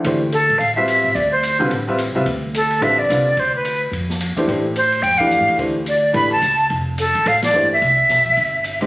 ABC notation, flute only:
X:1
M:4/4
L:1/8
Q:"Swing" 1/4=216
K:Ddor
V:1 name="Flute"
z2 A2 f e3 | d c2 z4 z | z2 A2 e d3 | c B2 z4 z |
z2 c2 g f3 | z2 d2 b a3 | z2 A2 f d2 e- | e6- e z |]